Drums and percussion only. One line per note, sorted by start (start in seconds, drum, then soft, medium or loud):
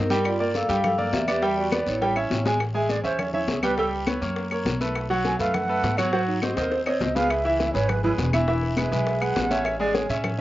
0.10 high bongo soft
0.10 high conga medium
0.10 short guiro medium
0.24 high bongo medium
0.24 high conga soft
0.24 long guiro medium
0.24 claves medium
0.40 high bongo soft
0.40 high conga soft
0.54 high bongo medium
0.54 high conga medium
0.54 short guiro medium
0.69 high bongo soft
0.69 high conga soft
0.69 short guiro medium
0.84 high bongo medium
0.84 high conga soft
0.84 low conga medium
0.84 long guiro medium
0.84 claves medium
0.99 high conga soft
0.99 low conga medium
1.13 high bongo medium
1.13 low bongo medium
1.13 high conga medium
1.13 short guiro medium
1.28 high bongo soft
1.28 high conga medium
1.28 short guiro medium
1.28 claves medium
1.42 high bongo medium
1.42 high conga soft
1.42 long guiro medium
1.58 high bongo soft
1.58 high conga soft
1.72 high bongo medium
1.72 high conga medium
1.72 short guiro medium
1.72 claves medium
1.87 short guiro medium
2.02 high bongo medium
2.02 high conga soft
2.02 long guiro medium
2.16 high conga soft
2.16 claves medium
2.31 low bongo medium
2.31 high conga medium
2.31 short guiro medium
2.46 low bongo loud
2.46 high conga medium
2.46 short guiro medium
2.60 high bongo medium
2.60 high conga soft
2.60 long guiro medium
2.60 claves medium
2.75 high bongo soft
2.75 high conga soft
2.89 high bongo medium
2.89 high conga medium
2.89 short guiro medium
3.04 high bongo soft
3.04 high conga soft
3.04 short guiro medium
3.19 high bongo medium
3.19 high conga soft
3.19 low conga medium
3.19 long guiro medium
3.19 claves medium
3.33 high conga soft
3.33 low conga medium
3.48 high bongo medium
3.48 low bongo medium
3.48 high conga medium
3.48 short guiro medium
3.63 high bongo soft
3.63 high conga medium
3.63 short guiro medium
3.63 claves medium
3.77 high bongo medium
3.77 long guiro medium
3.93 high bongo soft
3.93 high conga soft
4.07 high bongo medium
4.07 high conga medium
4.07 short guiro medium
4.07 claves medium
4.22 short guiro medium
4.36 high bongo medium
4.36 high conga soft
4.36 long guiro medium
4.51 high bongo soft
4.51 high conga soft
4.51 claves medium
4.66 high bongo medium
4.66 low bongo medium
4.66 high conga medium
4.66 short guiro medium
4.81 high bongo soft
4.81 high conga medium
4.81 short guiro medium
4.95 high bongo medium
4.95 long guiro medium
4.95 claves medium
5.10 high bongo soft
5.10 high conga soft
5.25 high bongo medium
5.25 high conga medium
5.25 short guiro medium
5.40 high bongo soft
5.40 high conga soft
5.40 short guiro medium
5.54 high bongo medium
5.54 high conga soft
5.54 low conga medium
5.54 long guiro medium
5.54 claves medium
5.69 high conga soft
5.83 high bongo medium
5.83 low bongo medium
5.83 high conga medium
5.83 short guiro medium
5.98 high bongo soft
5.98 high conga medium
5.98 short guiro medium
5.98 claves medium
6.13 high bongo medium
6.13 long guiro medium
6.28 high bongo soft
6.28 high conga soft
6.42 high bongo medium
6.42 high conga loud
6.42 short guiro medium
6.42 claves medium
6.57 high bongo medium
6.57 short guiro medium
6.72 high bongo medium
6.72 high conga soft
6.72 long guiro medium
6.86 high bongo medium
6.86 high conga soft
6.86 claves medium
7.01 low bongo loud
7.01 high conga medium
7.01 short guiro medium
7.16 low bongo medium
7.16 high conga medium
7.16 short guiro medium
7.30 high bongo medium
7.30 high conga soft
7.30 long guiro medium
7.30 claves medium
7.45 high bongo soft
7.45 high conga soft
7.60 high bongo medium
7.60 high conga medium
7.60 short guiro medium
7.75 high conga soft
7.75 short guiro medium
7.89 high bongo medium
7.89 high conga soft
7.89 low conga medium
7.89 claves medium
8.04 high conga soft
8.04 low conga medium
8.18 high bongo medium
8.18 low bongo medium
8.18 high conga medium
8.18 short guiro medium
8.33 high bongo soft
8.33 high conga medium
8.33 short guiro medium
8.33 claves medium
8.48 high bongo medium
8.48 high conga soft
8.48 long guiro medium
8.63 high bongo soft
8.63 high conga soft
8.77 high bongo medium
8.77 high conga medium
8.77 short guiro medium
8.77 claves medium
8.92 short guiro medium
9.07 high bongo medium
9.07 high conga soft
9.07 long guiro medium
9.22 high bongo soft
9.22 high conga soft
9.22 claves medium
9.36 high bongo medium
9.36 low bongo medium
9.36 high conga medium
9.36 short guiro medium
9.50 high bongo soft
9.50 high conga medium
9.50 short guiro medium
9.65 high bongo medium
9.65 high conga soft
9.65 long guiro medium
9.65 claves medium
9.80 high bongo soft
9.80 high conga soft
9.95 high bongo medium
9.95 high conga medium
9.95 short guiro medium
10.09 high bongo soft
10.09 high conga soft
10.09 short guiro medium
10.24 high bongo medium
10.24 high conga soft
10.24 low conga medium
10.24 long guiro medium
10.24 claves medium